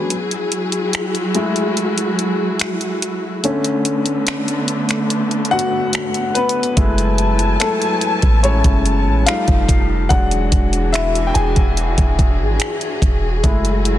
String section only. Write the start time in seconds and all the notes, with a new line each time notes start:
Already playing: G#4
0.11 F#3 E4 F#4
3.43 D3 A3 B3
6.77 F#3 E4 G#5 A5
9.27 F3 D#4 G4
10.10 E3 D4 F#4 G#4
13.43 F#3 E4 F#4